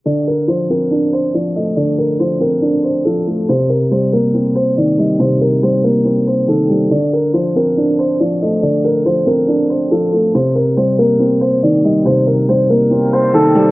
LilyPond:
<<
  \new Staff \with { instrumentName = "Grand piano" } { \time 4/4 \key d \phrygian \tempo 4 = 140 d''8 bes'8 c''8 bes'4 c''8 d''8 ees''8 | d''8 bes'8 c''8 bes'4 c''8 a'4 | c''8 bes'8 c''8 bes'4 c''8 d''8 ees''8 | c''8 bes'8 c''8 bes'4 c''8 a'4 |
d''8 bes'8 c''8 bes'4 c''8 d''8 ees''8 | d''8 bes'8 c''8 bes'4 c''8 a'4 | c''8 bes'8 c''8 bes'4 c''8 d''8 ees''8 | c''8 bes'8 c''8 bes'4 c''8 a'4 | }
  \new Staff \with { instrumentName = "Felt piano" } { \clef bass \time 4/4 \key d \phrygian d4 f8 c'8 d'4 f8 a8 | d4 f8 c'8 d'4 f8 a8 | c4 g8 bes8 c'4 ees8 g8 | c4 g8 bes8 c'4 ees8 g8 |
d4 f8 c'8 d'4 f8 a8 | d4 f8 c'8 d'4 f8 a8 | c4 g8 bes8 c'4 ees8 g8 | c4 g8 bes8 c'4 ees8 g8 | }
>>